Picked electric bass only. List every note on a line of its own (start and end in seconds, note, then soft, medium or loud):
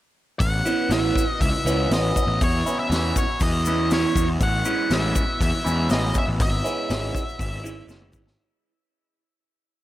0.40 0.61 A1 loud
0.89 1.11 A1 medium
1.40 1.51 C#2 medium
1.65 1.86 C#2 medium
1.90 2.11 A1 medium
2.27 2.38 A1 medium
2.41 2.62 E2 medium
2.90 3.11 E2 medium
3.41 4.04 E2 medium
4.15 4.37 E2 medium
4.40 4.62 A1 loud
4.90 5.12 A1 medium
5.40 5.51 E2 medium
5.66 5.87 E2 medium
5.90 6.11 A1 medium
6.28 6.38 A1 medium
6.40 6.61 G#1 medium
6.90 7.11 G#1 medium
7.39 7.81 G#1 medium
7.87 8.10 F#1 medium
8.13 8.36 G#1 medium